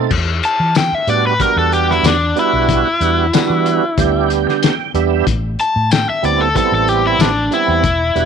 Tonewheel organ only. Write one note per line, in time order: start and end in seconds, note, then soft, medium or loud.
0.00 0.11 A3 medium
0.00 0.11 C4 medium
0.00 0.11 D#4 medium
0.00 0.12 A4 loud
1.08 1.34 G3 medium
1.08 1.34 B3 medium
1.08 1.34 D4 medium
1.08 1.34 F#4 medium
1.39 2.17 G3 medium
1.39 2.17 B3 medium
1.39 2.17 D4 medium
1.39 2.17 F#4 medium
2.36 2.88 G3 medium
2.36 2.88 B3 medium
2.36 2.88 D4 medium
2.36 2.89 F#4 medium
3.01 3.27 G3 medium
3.01 3.27 B3 medium
3.01 3.27 D4 medium
3.01 3.27 F#4 medium
3.33 3.85 G3 medium
3.33 3.85 B3 medium
3.33 3.85 D4 medium
3.33 3.86 F#4 medium
3.98 4.75 G3 medium
3.98 4.75 B3 medium
3.98 4.75 D4 medium
3.98 4.75 G4 loud
4.62 4.92 G5 medium
4.94 5.26 G3 medium
4.94 5.27 B3 medium
4.94 5.27 D4 medium
4.94 5.27 G4 loud
4.94 5.25 E5 medium
6.22 6.48 G3 medium
6.22 6.49 B3 medium
6.22 6.49 C4 medium
6.22 6.49 E4 medium
6.55 7.32 G3 medium
6.55 7.32 B3 medium
6.55 7.32 C4 medium
6.55 7.33 E4 medium
7.51 7.83 G3 medium
7.51 7.83 B3 medium
7.51 7.84 C4 medium
7.51 7.84 E4 medium
8.15 8.25 G3 medium
8.15 8.25 B3 medium
8.15 8.25 D4 medium
8.15 8.25 F#4 medium